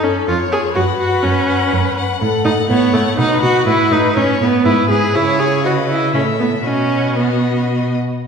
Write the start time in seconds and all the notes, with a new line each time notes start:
Already playing: F#2 A4
0.03 C#4 A4
0.28 F2 F4 C#5
0.52 G#4 C#5
0.75 F#2 F#4 B4 F#5
0.99 F#4 F#5
1.23 F#2 C#4
1.49 F#5
1.72 F#2
1.98 F#5
2.21 A2 A4 F#5
2.45 A2 D#4 F#5
2.68 A2 B3 F#5
2.72 C#5
2.93 A2 A3 F#5
3.17 B2 D#4 B4 F#5
3.42 B2 F#4 F#5
3.66 A2 E4 B4
3.91 A2 D#4 B4
4.16 A2 C#4 B4 C#5
4.40 A2 B3 B4
4.65 G#2 E4 B4
4.89 G#2 G#4 B4
5.14 C#3 E4 C#5
5.39 G#4
5.64 F#4 B4 D#5
5.89 E4
6.14 A2 C#4 A4 E5
6.40 B3
6.65 B2 C#4 F#4 D#5
7.16 B3 D#5